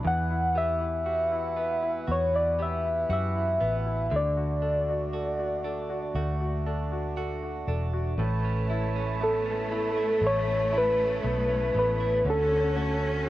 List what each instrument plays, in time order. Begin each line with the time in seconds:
Already playing: harmonium E4
0.03 clean electric guitar E2, fingered electric bass E2, harmonium E3 B4 F#5, grand piano E3, soft synth lead F#5
0.30 grand piano E4
0.55 clean electric guitar B3, grand piano G4, soft synth lead E5
0.81 grand piano E4
1.06 clean electric guitar F#4, grand piano G4
1.31 grand piano E4
1.57 clean electric guitar B3, grand piano B4
1.83 grand piano E4
2.08 fingered electric bass E2, grand piano B3, clean electric guitar F#4
2.12 soft synth lead C#5
2.34 grand piano E4, soft synth lead D5
2.59 clean electric guitar B3, grand piano G4, soft synth lead E5
2.85 grand piano E4
3.09 fingered electric bass F#2, clean electric guitar F#4, grand piano G4, soft synth lead E5
3.35 grand piano E4
3.60 fingered electric bass A1, clean electric guitar B3, grand piano B4
3.86 grand piano E4
4.11 fingered electric bass D2, grand piano D3, clean electric guitar D3, harmonium A3 D4 F#4
4.16 soft synth lead D5
4.37 grand piano F#4
4.62 clean electric guitar D4, grand piano A4
4.89 grand piano F#4
5.13 clean electric guitar F#4, grand piano A4
5.39 grand piano F#4
5.64 clean electric guitar D4, grand piano A4
5.90 grand piano F#4
6.15 fingered electric bass D2, grand piano A3, clean electric guitar F#4
6.41 grand piano F#4
6.66 clean electric guitar D4, grand piano A4
6.92 grand piano F#4
7.17 clean electric guitar F#4, grand piano A4
7.43 grand piano F#4
7.68 fingered electric bass E1, clean electric guitar D4, grand piano A4
7.94 grand piano F#4
8.18 fingered electric bass A1, clean electric guitar A2, grand piano A3, cello section A3, harmonium E4 B4 C#5 A5
8.45 clean electric guitar C#4
8.70 clean electric guitar E4, grand piano E4
8.96 clean electric guitar C#4
9.21 grand piano A3, clean electric guitar B3, soft synth lead A4
9.46 clean electric guitar C#4
9.71 clean electric guitar B3, grand piano E4
9.97 clean electric guitar E4
10.21 fingered electric bass A1, clean electric guitar A2, grand piano A3, harmonium B5
10.27 soft synth lead C#5
10.48 clean electric guitar C#4
10.73 grand piano E4, clean electric guitar E4
10.78 soft synth lead B4
10.98 clean electric guitar C#4
11.23 fingered electric bass B1, grand piano A3, clean electric guitar B3
11.49 clean electric guitar C#4
11.74 fingered electric bass A1, clean electric guitar B3, grand piano E4
11.79 soft synth lead B4
12.00 clean electric guitar E4
12.25 fingered electric bass D2, clean electric guitar D3, grand piano D3, cello section C#4, harmonium F#4 A4 F#5 A5
12.30 soft synth lead A4
12.76 grand piano A3, clean electric guitar F#4